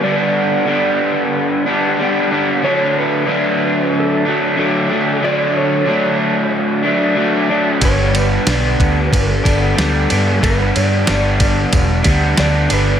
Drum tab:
RD |--------|--------|--------|xxxxxxxx|
SD |--------|--------|--------|--o---o-|
BD |--------|--------|--------|o--ooo--|

RD |xxxxxxxx|
SD |--o---o-|
BD |o--ooo--|